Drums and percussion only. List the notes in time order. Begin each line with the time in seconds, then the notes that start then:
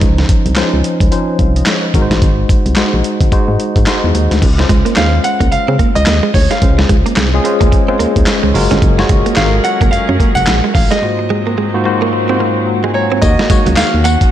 0.01 kick, closed hi-hat
0.18 snare
0.29 kick, closed hi-hat
0.46 closed hi-hat
0.56 snare, clap, closed hi-hat
0.84 closed hi-hat
1.00 kick, closed hi-hat
1.12 closed hi-hat
1.39 kick, closed hi-hat
1.56 closed hi-hat
1.66 snare, clap, closed hi-hat
1.94 kick, closed hi-hat
2.11 snare, closed hi-hat
2.22 kick, closed hi-hat
2.49 kick, closed hi-hat
2.66 closed hi-hat
2.76 snare, clap, closed hi-hat
3.04 closed hi-hat
3.21 kick, closed hi-hat
3.32 kick, closed hi-hat
3.60 closed hi-hat
3.76 kick, closed hi-hat
3.86 snare, clap, closed hi-hat
4.15 closed hi-hat
4.31 snare, closed hi-hat
4.42 kick, closed hi-hat, crash
4.59 snare
4.69 kick, closed hi-hat
4.86 closed hi-hat
4.96 snare, clap, closed hi-hat
5.24 closed hi-hat
5.41 kick, closed hi-hat
5.52 closed hi-hat
5.79 kick, closed hi-hat
5.96 closed hi-hat
6.06 snare, clap, closed hi-hat
6.34 kick, open hi-hat
6.51 snare, closed hi-hat
6.62 kick, closed hi-hat
6.79 snare
6.89 kick, closed hi-hat
7.06 closed hi-hat
7.16 snare, clap, closed hi-hat
7.45 closed hi-hat
7.61 kick, closed hi-hat
7.72 kick, closed hi-hat
8.00 closed hi-hat
8.16 kick, closed hi-hat
8.26 snare, clap, closed hi-hat
8.55 open hi-hat
8.71 snare, closed hi-hat
8.82 kick, closed hi-hat
8.99 snare
9.09 kick, closed hi-hat
9.26 closed hi-hat
9.36 snare, clap, closed hi-hat
9.65 closed hi-hat
9.81 kick, closed hi-hat
9.93 closed hi-hat
10.20 kick, closed hi-hat
10.37 closed hi-hat
10.47 snare, clap, closed hi-hat
10.75 kick, open hi-hat
10.91 snare, closed hi-hat
13.22 kick, closed hi-hat, tambourine
13.39 snare
13.50 kick, closed hi-hat, tambourine
13.66 closed hi-hat
13.76 snare, clap, closed hi-hat, tambourine
14.05 closed hi-hat, tambourine
14.21 kick, closed hi-hat